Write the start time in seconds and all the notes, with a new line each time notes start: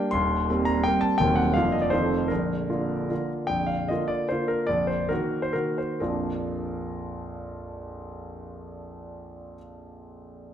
Already playing: G3 A#3 D4 G5
0.11 D#1 D#2 C6
0.49 G3 A#3 C4
0.65 A#5
0.84 G3 A#3 C4 G5
1.01 A5
1.18 D#1 D#2 F#3 A#3 C4 G5
1.36 F#5
1.54 F1 F2 D3 A#3 F4 F5
1.72 D#5
1.82 D5
1.90 F1 F2 D#3 A3 F4 C5
2.28 A#0 A#1 A#4
2.70 D3 A#3 F4
3.10 D3 A#3 F4
3.47 A#0 A#1 G5
3.67 F5
3.88 D3 A#3 F4 D#5
4.08 D5
4.29 D3 A#3 F4 C5
4.48 A#4
4.67 A#0 A#1 D5
4.87 C5
5.09 D#3 A#3 F#4 A#4
5.42 C5
5.53 D#3 A#3 F#4 A#4
5.78 C5
6.00 A#1 F2 F3 A#3 D4 F4 A#4